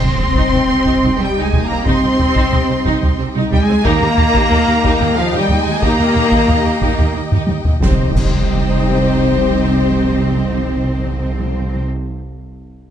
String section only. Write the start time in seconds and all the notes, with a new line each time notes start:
Already playing: D#4 G4 D#5 G5
3.83 D#4 G4 D#5 G5
7.83 D#4 G4 D#5 G5